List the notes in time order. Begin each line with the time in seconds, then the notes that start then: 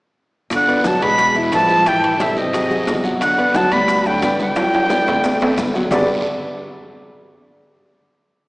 0.50 G1 D3, high bongo, high conga, high timbale, long guiro, maracas
0.55 F#5
0.68 B3 B4 D5, high bongo, high conga, high timbale, maracas
0.84 F#3 F#4 F#5 A5, high bongo, high conga, short guiro, maracas
1.01 E1 G#3 G#4 B4 B5, high bongo, high conga, high timbale, short guiro, maracas
1.18 high bongo, high conga, high timbale, long guiro, maracas
1.35 E3 E4 E5, high conga, maracas
1.52 A1 F3 G#3 F4 B4 A5, high bongo, low bongo, high conga, high timbale, low timbale, short guiro, maracas
1.69 high bongo, high conga, short guiro, maracas
1.85 E3 E4 E5 G5, high bongo, high conga, high timbale, long guiro, maracas
2.03 high conga, high timbale, maracas
2.20 C3 G3 G4 A4 E5, high bongo, high conga, high timbale, short guiro, maracas
2.36 G#1 C3 D#5, high bongo, high conga, short guiro, maracas
2.53 F#3 F#4 G#4, high bongo, high timbale, long guiro, maracas
2.70 F#3 F#4 G#4, high bongo, high conga, maracas
2.87 G1, high bongo, low bongo, high conga, high timbale, low timbale, short guiro, maracas
3.04 F#3 F#4 F#5, high bongo, high conga, short guiro, maracas
3.21 D3 F#5, high bongo, high conga, high timbale, long guiro, maracas
3.38 B3 B4 D5, high bongo, high conga, high timbale, maracas
3.54 F#3 F#4 F#5 A5, high bongo, high conga, short guiro, maracas
3.71 D2 G3 B3 B4 D5 B5, high bongo, high conga, high timbale, short guiro, maracas
3.88 high bongo, high conga, high timbale, long guiro, maracas
4.05 D3 F#3 F#4 F#5 G5, high conga, maracas
4.22 G1 B3 B4 D5, high bongo, low bongo, high conga, high timbale, short guiro, maracas
4.39 D3 G5, high bongo, high conga, short guiro, maracas
4.56 F#3 D4 G5, high bongo, high conga, high timbale, long guiro, maracas
4.73 high conga, high timbale, maracas
4.90 B3 B4 D5, high bongo, high conga, short guiro, maracas
5.07 D2, high bongo, high conga, low timbale, short guiro, maracas
5.23 B3 B4 D5, high bongo, low timbale, long guiro, maracas
5.40 B3 B4 D5, high bongo, high conga, low timbale, maracas
5.58 G1, high bongo, low bongo, high conga, short guiro, maracas
5.74 F#3 F#4 F#5, high bongo, high conga, low timbale, short guiro, maracas
5.91 G1 G3 D4 F#4 G4 B4 D5, low bongo, low conga, low timbale, long guiro, maracas